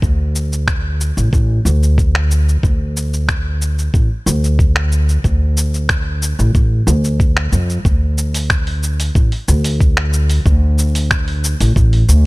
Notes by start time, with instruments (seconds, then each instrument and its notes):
0.02 upright bass D2, kick, shaker
0.36 shaker
0.53 shaker
0.68 finger snap, kick, shaker
1.01 shaker
1.17 upright bass A1, shaker
1.33 upright bass A1, kick, shaker
1.65 upright bass D2, shaker
1.83 shaker
1.98 kick, shaker
2.15 finger snap
2.31 shaker
2.49 shaker
2.63 upright bass D2, kick, shaker
2.97 shaker
3.14 shaker
3.29 finger snap, kick, shaker
3.62 shaker
3.79 shaker
3.94 upright bass A1, kick, shaker
4.26 upright bass D2, shaker
4.44 shaker
4.59 kick, shaker
4.76 finger snap
4.92 shaker
5.09 shaker
5.24 upright bass D2, kick, shaker
5.57 shaker
5.74 shaker
5.89 finger snap, kick, shaker
6.22 shaker
6.39 upright bass A1, shaker
6.55 upright bass A1, kick, shaker
6.87 upright bass D2, shaker
7.04 shaker
7.20 kick, shaker
7.37 finger snap
7.52 upright bass F2, shaker
7.70 shaker
7.85 upright bass D2, kick, shaker
8.18 shaker
8.34 open hi-hat, shaker
8.50 finger snap, kick, shaker
8.67 open hi-hat
8.83 shaker
9.00 open hi-hat, shaker
9.15 upright bass A1, kick, shaker
9.32 open hi-hat
9.48 upright bass D2, shaker
9.64 open hi-hat, shaker
9.81 kick, shaker
9.97 finger snap
10.13 shaker
10.30 open hi-hat, shaker
10.46 upright bass D2, kick, shaker
10.78 shaker
10.95 open hi-hat, shaker
11.11 finger snap, kick, shaker
11.28 open hi-hat
11.44 shaker
11.60 upright bass A1, open hi-hat, shaker
11.76 upright bass A1, kick, shaker
11.93 open hi-hat
12.09 upright bass D2, shaker